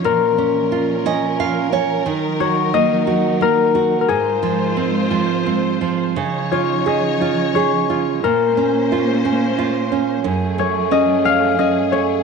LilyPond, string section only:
\new Staff \with { instrumentName = "String section" } { \time 3/4 \key bes \minor \tempo 4 = 89 << { bes'2.~ | bes'2. | c''2. | des''2. |
c''2. | aes'2. | } \\ { <f des'>2. | <ges ees'>2. | <aes f'>2. | <f ees'>2. |
<bes des'>2. | <ges a>2. | } >> }